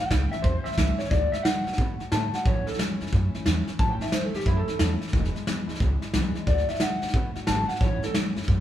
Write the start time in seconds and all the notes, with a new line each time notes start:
0.00 A3 C#4 E4 G5
0.11 C#2 A2 E3 A3 C#4 E4, kick, snare, hi-hat pedal
0.32 A3 C#4 E4 E5, muted upright bass stroke, snare
0.42 E2 E3 A3 C#4 E4 C5, kick, snare
0.64 A3 C#4 E4 E5, muted upright bass stroke, snare
0.72 snare
0.78 C#2 A2 E3 A3 C#4 E4, kick, snare, hi-hat pedal
0.98 A3 C#4 E4 C#5, snare
1.05 snare
1.10 D2 D3 A3 D4 F#4 D5, kick, snare
1.32 A3 D4 F#4 E5, muted upright bass stroke, snare
1.43 A2 D3 A3 D4 F#5, snare, hi-hat pedal
1.48 F#4
1.66 B2 D4 F#4, snare
1.70 A3, snare
1.78 B2 D3 A3 D4 F#4, kick, snare
2.00 A3 D4 F#4, muted upright bass stroke, snare
2.12 A2 D3 A3 D4 F#4 A5, snare, hi-hat pedal
2.34 A3 D4 F#4 F#5, muted upright bass stroke, snare
2.46 A1 A2 E3 A3 C#4 E4 C#5, kick, snare
2.67 A3 C#4 E4 A4, muted upright bass stroke, snare
2.73 snare
2.78 E2 A2 E3 A3 C#4 E4, snare, hi-hat pedal
3.01 F#2 A3 C#4 E4, snare
3.07 snare
3.13 F#2 E3 A3 C#4 E4, kick, snare
3.35 A3 C#4 E4, muted upright bass stroke, snare
3.46 E2 A2 E3 A3 C#4 E4, snare, hi-hat pedal
3.67 A3 C#4 E4, muted upright bass stroke, snare
3.79 A1 A2 E3 A3 C#4 E4 A5, kick, snare
3.90 G5
4.01 A3 C#4 E4 E5, muted upright bass stroke, snare
4.07 snare
4.12 E2 A2 E3 A3 C#4 E4 C5, snare, hi-hat pedal
4.24 A4
4.34 F#2 A3 C#4 E4 G4, snare
4.40 snare
4.45 F#2 E3 A3 C#4 E4, kick, snare
4.57 A4
4.67 A3 C#4 E4, muted upright bass stroke, snare
4.79 E2 A2 E3 A3 C#4 E4, snare, hi-hat pedal
5.01 A3 C#4 E4, muted upright bass stroke, snare
5.07 snare
5.13 E1 E2 B2 E3 G#3 D4 E4, kick, snare
5.25 snare
5.34 E3 G#3 D4 E4, muted upright bass stroke, snare
5.46 B1 E2 B2 E3 G#3 D4 E4, snare, hi-hat pedal
5.67 D2 E3 G#3 D4 E4, snare
5.75 snare
5.79 C#2 E3 G#3 D4 E4, kick, snare
6.01 E3 G#3 D4 E4, muted upright bass stroke, snare
6.14 B1 E2 B2 E3 G#3 D4 E4, snare, hi-hat pedal
6.35 E3 G#3 D4 E4, muted upright bass stroke, snare
6.47 D2 D3 A3 D4 F#4 D5, kick, snare
6.58 snare
6.68 D4 F#4 E5, snare
6.73 A3, snare
6.80 A2 D3 A3 D4 F#4 F#5, snare, hi-hat pedal
7.02 B2 A3 D4 F#4, snare
7.08 snare
7.13 B2 D3 A3 D4 F#4, kick, snare
7.35 A3 D4 F#4, muted upright bass stroke, snare
7.47 G#1 D3 A3 D4 F#4 A5, snare, hi-hat pedal
7.68 D4 F#4 F#5, muted upright bass stroke, snare
7.72 A3, snare
7.81 A1 A2 E3 A3 C#4 E4 C#5, kick, snare
8.03 A3 C#4 E4 A4, muted upright bass stroke, snare
8.14 E2 A2 E3 A3 C#4 E4, snare, hi-hat pedal
8.36 F#2 A3 C#4 E4, snare
8.42 snare
8.48 F#2 E3 A3 C#4 E4, kick, snare